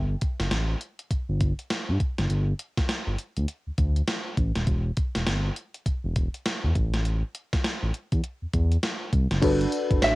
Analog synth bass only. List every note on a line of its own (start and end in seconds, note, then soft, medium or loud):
0.00 0.16 G1 loud
0.40 0.49 F#1 medium
0.51 0.75 A1 medium
1.11 1.18 G1 soft
1.29 1.53 G1 medium
1.89 1.98 G2 medium
2.18 2.27 F#1 medium
2.30 2.53 G1 loud
2.78 2.82 G1 soft
3.07 3.16 G1 medium
3.37 3.46 D2 medium
3.67 3.72 D2 soft
3.78 4.02 D2 medium
4.38 4.52 A1 medium
4.56 4.65 D#1 medium
4.67 4.91 E1 loud
5.15 5.25 E1 medium
5.27 5.51 G1 medium
5.86 5.93 E1 soft
6.04 6.28 E1 medium
6.64 6.73 E2 medium
6.75 7.23 A1 loud
7.53 7.58 A1 soft
7.83 7.92 A1 medium
8.12 8.21 E2 medium
8.42 8.47 E2 soft
8.54 8.77 E2 medium
9.13 9.28 C2 medium
9.31 9.40 F#1 medium
9.43 9.66 G1 loud
9.90 10.00 F#1 medium
10.02 10.15 A1 medium